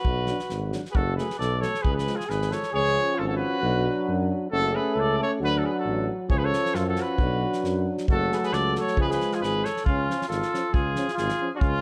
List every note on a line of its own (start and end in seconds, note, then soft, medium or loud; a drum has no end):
0.00 0.74 F#4 medium
0.00 0.74 B4 medium
0.05 0.31 B1 medium
0.05 kick medium
0.26 0.38 F#3 medium
0.26 0.38 D4 medium
0.26 snare soft
0.39 snare soft
0.50 0.75 G#1 medium
0.50 snare soft
0.72 0.81 F#3 medium
0.72 0.83 D4 medium
0.72 snare soft
0.85 snare soft
0.90 0.96 G#4 medium
0.90 0.97 B4 medium
0.95 1.20 F#1 medium
0.95 1.17 F#4 medium
0.95 1.16 A4 medium
0.95 kick medium
1.16 1.27 F#3 medium
1.16 1.27 A3 medium
1.16 1.38 G#4 medium
1.16 1.37 B4 medium
1.16 snare soft
1.30 snare soft
1.38 1.64 B1 medium
1.38 1.58 A4 medium
1.38 1.62 D5 medium
1.38 snare soft
1.58 1.70 F#3 soft
1.58 1.83 A4 medium
1.58 1.84 C#5 medium
1.63 1.73 A3 soft
1.63 snare soft
1.74 snare soft
1.82 2.09 C#2 medium
1.82 1.93 G#4 medium
1.82 1.95 B4 medium
1.82 kick medium
1.94 2.17 G#4 medium
1.94 2.18 B4 medium
1.99 snare soft
2.07 2.16 F3 soft
2.07 2.17 G#3 medium
2.07 snare soft
2.15 2.27 F4 medium
2.15 2.31 G#4 medium
2.20 snare soft
2.26 2.54 G#1 medium
2.26 2.52 G#4 medium
2.26 2.54 B4 medium
2.30 snare soft
2.42 snare soft
2.50 2.59 F3 soft
2.50 2.61 G#3 soft
2.50 2.72 A4 medium
2.50 2.74 C#5 medium
2.50 snare soft
2.63 snare soft
2.72 2.98 C#2 medium
2.72 3.62 F3 medium
2.72 3.64 C#4 medium
2.72 3.16 G#4 medium
2.72 3.20 C#5 loud
3.15 3.43 G#1 medium
3.15 3.26 F4 medium
3.15 3.27 A4 medium
3.26 3.36 F#4 medium
3.26 3.36 A4 medium
3.36 4.24 F#4 medium
3.36 4.24 B4 medium
3.60 3.87 B1 loud
3.60 4.50 F#3 medium
3.60 4.51 D4 medium
4.08 4.32 F#2 medium
4.50 4.76 F#1 medium
4.50 5.42 A3 medium
4.50 5.44 C#4 medium
4.50 4.74 F#4 medium
4.50 4.77 A4 loud
4.73 4.96 G#4 medium
4.73 5.01 B4 medium
4.95 5.20 C#2 medium
4.95 5.18 A4 loud
5.00 5.20 D5 medium
5.19 5.29 A4 medium
5.19 5.32 C#5 medium
5.40 5.65 D2 medium
5.40 6.31 F#3 medium
5.40 6.13 D4 medium
5.40 5.52 F#4 medium
5.45 5.60 B4 loud
5.52 5.65 F#4 medium
5.58 5.67 A4 medium
5.64 5.73 G#4 medium
5.64 5.76 B4 medium
5.74 6.05 F#4 medium
5.79 6.07 A4 medium
5.84 6.09 A1 medium
6.29 6.54 C#2 medium
6.29 7.22 F3 medium
6.29 7.22 C#4 medium
6.29 6.38 G#4 medium
6.29 6.39 C#5 medium
6.29 kick medium
6.38 6.44 G#4 medium
6.38 6.46 B4 medium
6.43 6.77 A4 medium
6.43 6.76 C#5 loud
6.53 snare soft
6.66 snare soft
6.74 6.99 F#2 medium
6.74 6.86 F4 medium
6.74 6.87 A4 medium
6.74 snare soft
6.87 6.95 F#4 medium
6.87 7.03 A4 medium
6.95 7.85 F#4 medium
6.95 snare soft
7.01 7.88 B4 medium
7.18 7.44 B1 medium
7.18 8.09 F#3 medium
7.18 8.09 D4 medium
7.18 kick medium
7.53 snare soft
7.64 7.88 F#2 medium
7.64 snare soft
7.98 snare soft
8.07 8.32 F#1 medium
8.07 8.99 F#3 medium
8.07 8.98 A3 medium
8.07 8.34 F#4 medium
8.07 8.36 A4 loud
8.07 kick medium
8.32 8.44 F#4 medium
8.32 8.36 G#4 medium
8.32 8.38 B4 medium
8.32 snare soft
8.37 8.46 A4 medium
8.43 8.54 G#4 medium
8.43 8.55 B4 loud
8.43 snare soft
8.52 8.77 C#2 medium
8.52 8.75 A4 medium
8.52 8.75 D5 loud
8.52 snare soft
8.76 8.96 A4 medium
8.76 snare soft
8.80 8.98 C#5 medium
8.87 snare soft
8.96 9.20 C#2 medium
8.96 9.69 F3 medium
8.96 9.68 G#3 medium
8.96 kick medium
9.00 9.09 G#4 medium
9.00 9.10 B4 medium
9.09 9.36 G#4 medium
9.09 9.35 B4 medium
9.09 snare soft
9.21 snare soft
9.32 9.43 F4 medium
9.32 9.41 G#4 medium
9.32 snare soft
9.41 9.65 G#1 medium
9.41 9.67 G#4 medium
9.41 9.66 B4 medium
9.41 snare soft
9.65 9.86 A4 medium
9.65 9.84 C#5 medium
9.65 snare soft
9.77 snare soft
9.85 10.09 C#2 medium
9.85 10.28 C#4 medium
9.85 10.26 F4 medium
9.85 kick medium
10.08 10.17 F3 medium
10.08 10.17 C#4 medium
10.08 snare soft
10.22 snare soft
10.28 10.42 G#1 medium
10.28 10.73 F4 medium
10.28 10.75 A4 medium
10.28 snare soft
10.42 snare soft
10.52 10.63 F3 medium
10.52 10.61 C#4 medium
10.52 snare soft
10.73 10.98 C#2 medium
10.73 11.13 F4 medium
10.73 11.17 G#4 medium
10.73 kick medium
10.96 11.06 F3 medium
10.96 11.05 C#4 medium
10.96 snare soft
11.08 snare soft
11.14 11.48 F4 medium
11.14 11.50 G#4 medium
11.14 snare soft
11.19 11.31 G#1 medium
11.29 snare soft
11.41 11.50 F3 medium
11.41 11.50 C#4 medium
11.55 11.81 C#4 medium
11.55 11.60 D4 medium
11.55 11.81 F4 loud
11.55 11.59 F#4 medium
11.61 11.81 C#2 medium
11.61 kick medium